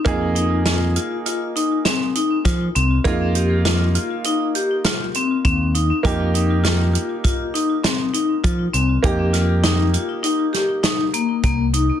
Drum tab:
HH |xxxxxxxxxx|xxxxxxxxxx|xxxxxxxxxx|xxxxxxxxxx|
SD |--o---o-o-|--o---o---|--o---o---|-oo--oo---|
BD |o-------o-|o-------o-|o---o---o-|o-------o-|